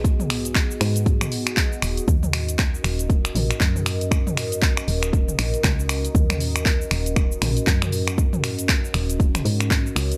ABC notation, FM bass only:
X:1
M:4/4
L:1/8
Q:"Swing 16ths" 1/4=118
K:Ebm
V:1 name="FM bass" clef=bass
C,,3 A,,2 z2 E,,, | E,,3 E,,,2 B,,, G,,2- | G,,3 E,,,2 B,,, D,,2 | E,,3 E,,,2 B,,, G,,2- |
G,,3 E,,,2 A,,2 D,, |]